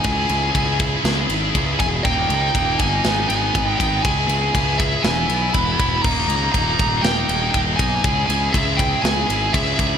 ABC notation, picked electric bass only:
X:1
M:4/4
L:1/8
Q:1/4=120
K:none
V:1 name="Picked electric bass" clef=bass
_D,, D,, D,,2 D,, _A,,, D,, _F,,, | _E,,, _D,, E,,, G,,, _A,,, A,,, A,,, A,,, | _D,, D,, D,,2 E,,, B,,, E,,, E,,, | _E,,, _D,, E,,, E,,, E,,, E,,, E,,, _C,, |
_D,, D,, D,,2 D,, _A,,, D,, D,, |]